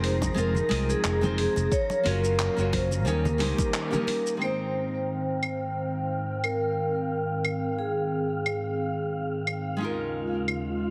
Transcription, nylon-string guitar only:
0.00 0.32 G#3 medium
0.00 0.32 C4 medium
0.00 0.33 D#4 medium
0.00 0.33 F4 medium
0.00 0.34 C5 medium
0.34 0.55 G#3 loud
0.34 0.55 C4 medium
0.34 0.56 F4 medium
0.38 0.57 F5 loud
0.69 1.17 G#3 medium
0.69 1.18 C4 medium
0.69 1.18 D#4 medium
0.69 1.19 F4 medium
0.69 1.19 D#5 loud
1.21 1.69 G#3 medium
1.21 1.69 C4 medium
1.21 1.70 D#4 medium
1.21 1.70 F4 medium
1.21 1.71 C5 medium
2.03 2.52 A#3 medium
2.03 2.53 C#4 medium
2.03 2.53 F4 medium
2.03 2.54 F#4 medium
2.03 2.54 C#5 loud
2.56 3.02 A#3 medium
2.56 3.03 C#4 medium
2.56 3.03 F4 medium
2.56 3.04 F#4 medium
2.61 3.04 C#5 medium
3.05 3.25 G3 loud
3.05 3.25 A#3 medium
3.05 3.26 C#4 medium
3.05 3.26 D#4 medium
3.05 3.26 C#5 loud
3.38 3.87 G3 medium
3.38 3.87 A#3 medium
3.38 3.88 C#4 medium
3.38 3.88 D#4 medium
3.38 3.89 C5 loud
3.91 4.38 G3 medium
3.91 4.37 A#3 medium
3.91 4.38 C#4 medium
3.91 4.40 D#4 medium
3.91 4.40 A#4 medium
4.37 9.75 G#3 medium
4.37 9.76 C4 medium
4.37 9.77 D#4 medium
4.43 9.79 C5 medium
4.43 9.78 G5 medium
9.77 10.90 G#3 medium
9.77 10.90 C#4 medium
9.77 10.90 D#4 medium
9.82 10.90 F4 medium
9.82 10.90 A#4 medium

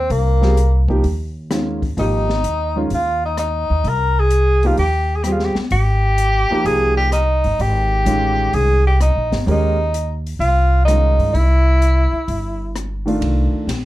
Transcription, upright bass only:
0.10 0.99 C2 loud
1.04 1.93 D#2 medium
1.97 2.41 G#1 medium
2.44 2.87 D#2 medium
2.91 3.65 D#2 medium
3.70 3.84 D#2 medium
3.84 4.74 C2 loud
4.78 5.53 D#2 medium
5.55 muted upright bass stroke soft
5.71 6.46 G#1 medium
6.51 muted upright bass stroke soft
6.65 7.40 C2 medium
7.44 7.58 G1 medium
7.59 8.03 G#1 medium
8.06 8.49 A1 medium
8.54 9.12 C2 medium
9.16 9.30 A#1 medium
9.32 9.46 G1 medium
9.47 10.37 D#2 loud
10.39 11.15 C2 medium
11.18 11.33 G2 medium
11.34 12.09 C2 medium
12.13 muted upright bass stroke soft
12.28 13.18 G1 medium
13.21 13.51 C2 medium
13.53 muted upright bass stroke soft
13.67 13.85 A#1 medium

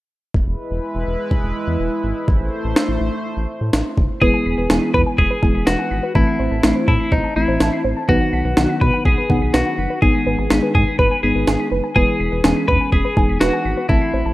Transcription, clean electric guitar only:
4.22 4.94 G#4 medium
4.94 5.01 B4 medium
5.18 5.68 G#4 medium
5.67 6.12 F#4 medium
6.15 6.87 E4 medium
6.88 7.13 E4 medium
7.12 7.36 D#4 medium
7.36 7.81 E4 medium
8.09 8.84 F#4 medium
8.81 9.04 B4 loud
9.05 9.55 G#4 medium
9.54 9.99 F#4 medium
10.02 10.74 G#4 medium
10.75 10.97 G#4 medium
10.99 11.21 B4 medium
11.23 11.68 G#4 medium
11.96 12.68 G#4 medium
12.68 12.91 B4 medium
12.92 13.37 G#4 loud
13.41 13.86 F#4 medium
13.89 14.34 E4 medium

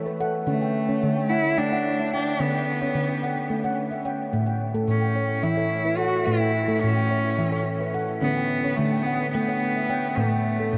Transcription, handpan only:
0.00 0.47 E3 medium
0.00 0.19 A4 medium
0.06 0.47 B4 medium
0.20 0.61 A4 medium
0.20 0.48 F#5 medium
0.47 0.95 D3 medium
0.47 0.75 C#4 medium
0.62 1.02 G5 medium
0.89 1.16 C#4 medium
0.89 1.30 C#5 medium
1.03 1.51 D3 medium
1.16 1.56 G5 medium
1.30 1.57 F#5 medium
1.58 2.40 A3 medium
1.58 1.99 G5 medium
1.72 2.12 C#5 medium
1.72 1.99 F#5 medium
2.00 2.41 E5 medium
2.13 2.54 C#5 medium
2.13 2.40 G5 medium
2.40 2.88 D3 medium
2.40 2.68 C#4 medium
2.55 2.95 G5 medium
2.82 3.09 C#4 medium
2.82 3.23 C#5 medium
2.95 3.43 D3 medium
3.09 3.50 G5 medium
3.23 3.50 F#5 medium
3.50 4.32 A3 medium
3.64 4.04 C#5 medium
3.64 3.92 F#5 medium
3.91 4.33 E5 medium
4.05 4.47 C#5 medium
4.05 4.33 G5 medium
4.33 4.82 A2 medium
4.33 4.61 A3 medium
4.46 4.88 G5 medium
4.74 5.02 A3 medium
4.74 5.16 A4 medium
4.88 5.37 A2 medium
5.01 5.43 G5 medium
5.16 5.44 C#5 medium
5.43 6.27 E3 medium
5.43 5.85 E5 medium
5.57 5.97 A4 medium
5.57 5.85 C#5 medium
5.85 6.27 B4 medium
5.98 6.41 A4 medium
5.98 6.26 F#5 medium
6.27 6.76 A2 medium
6.27 6.55 A3 medium
6.40 6.82 G5 medium
6.68 6.96 A3 medium
6.68 7.10 A4 medium
6.84 7.32 A2 medium
6.96 7.38 G5 medium
7.11 7.38 C#5 medium
7.39 8.22 E3 medium
7.39 7.80 E5 medium
7.52 7.93 A4 medium
7.52 7.80 C#5 medium
7.81 8.22 B4 medium
7.94 8.36 A4 medium
7.94 8.22 F#5 medium
8.22 8.70 D3 medium
8.22 8.50 C#4 medium
8.36 8.78 G5 medium
8.64 8.92 C#4 medium
8.64 9.06 C#5 medium
8.79 9.27 D3 medium
8.92 9.34 G5 medium
9.06 9.33 F#5 medium
9.35 10.17 A3 medium
9.35 9.76 G5 medium
9.48 9.89 C#5 medium
9.48 9.76 F#5 medium
9.76 10.17 E5 medium
9.90 10.31 C#5 medium
9.90 10.17 G5 medium
10.17 10.66 A2 medium
10.17 10.45 A3 medium
10.32 10.73 G5 medium
10.60 10.78 A3 medium
10.60 10.78 A4 medium
10.73 10.78 A2 medium

